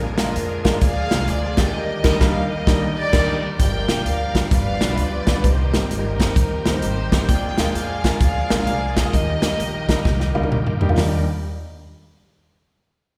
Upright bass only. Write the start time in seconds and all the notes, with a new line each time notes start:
Already playing: A#1
0.36 F2
0.81 D2
1.11 C2
1.28 D2
2.04 D#2
2.21 D#2
2.67 D#2
3.14 D#2
3.59 G1
3.89 C2
4.05 D2
4.51 G1
4.82 B1
4.98 D2
5.44 C2
5.73 G#1
5.90 G1
6.36 A#1
6.66 D2
6.83 G#1
7.12 A1
7.29 A#1
7.58 D2
7.75 F2
8.21 D2
8.51 A#1
8.67 C2
9.13 D#2
9.43 D2
9.60 A#1
10.06 C2
10.35 D2
10.52 D#2
10.98 D#2